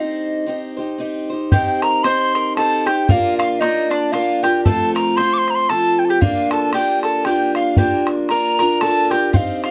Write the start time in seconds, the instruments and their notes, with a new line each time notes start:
Already playing: steel-string acoustic guitar C4 D#4 G4 C5
0.00 flute D#5
0.46 steel-string acoustic guitar C4 D#4 G4 C5
0.77 steel-string acoustic guitar D#4 G4 C5
0.98 steel-string acoustic guitar C4 D#4 G4 C5
1.30 steel-string acoustic guitar D#4 G4 C5
1.51 steel-string acoustic guitar C4 D#4 G4 C5, mandolin G4, flute G5, bodhran
1.82 mandolin A#4, flute A#5, bodhran
2.03 steel-string acoustic guitar C4 D#4 G4 C5, mandolin C5, flute C6, bodhran
2.35 mandolin A#4, bodhran
2.57 steel-string acoustic guitar C4 D#4 G4 C5, mandolin A4, flute A5, bodhran
2.85 steel-string acoustic guitar D#4 G4 C5, mandolin G4, flute G5, bodhran
3.08 steel-string acoustic guitar A#3 D4 F4 A#4, mandolin F4, flute F5 G5, bodhran
3.38 mandolin F4, flute F5, bodhran
3.60 steel-string acoustic guitar A#3 D4 F4 A#4, mandolin D#4, flute D#5, bodhran
3.90 mandolin D4, flute D5, bodhran
4.12 steel-string acoustic guitar A#3 D4 F4 A#4, mandolin F4, flute F5, bodhran
4.43 steel-string acoustic guitar D4 F4 A#4, mandolin G4, flute G5, bodhran
4.64 steel-string acoustic guitar F3 A3 C4 F4, mandolin A4, flute A5, bodhran
4.95 mandolin A#4, flute A#5, bodhran
5.16 steel-string acoustic guitar F3 A3 C4, mandolin C5, flute C6, bodhran
5.21 steel-string acoustic guitar F4
5.33 flute D6
5.38 flute C6
5.48 flute A#5, bodhran
5.55 flute C6
5.69 steel-string acoustic guitar F3 A3 C4 F4, mandolin A4, flute A5, bodhran
5.99 flute G5
6.05 flute A5
6.10 mandolin G4, flute G5
6.21 steel-string acoustic guitar A#3 D4 F4 A#4, mandolin F4, flute F5, bodhran
6.51 mandolin A4, flute A5, bodhran
6.73 steel-string acoustic guitar A#3 D4 F4 A#4, mandolin G4, flute G5, bodhran
7.03 mandolin A4, flute A5, bodhran
7.25 steel-string acoustic guitar A#3 D4 F4 A#4, mandolin G4, flute G5, bodhran
7.55 mandolin F4, flute F5, bodhran
7.77 steel-string acoustic guitar A#3 D4 F4 A#4, mandolin G4, flute G5, bodhran
8.07 bodhran
8.29 steel-string acoustic guitar A#3 D4 F4 A#4, mandolin A#4, flute A#5, bodhran
8.59 steel-string acoustic guitar D4 F4 A#4, mandolin A#4, bodhran
8.81 steel-string acoustic guitar A#3 D4 F4 A#4, mandolin A4, flute A5, bodhran
9.11 steel-string acoustic guitar D4 F4 A#4, mandolin G4, flute G5, bodhran
9.33 steel-string acoustic guitar C4 D#4 G4 C5, mandolin F4, flute F5 G5, bodhran
9.64 mandolin F4, flute F5, bodhran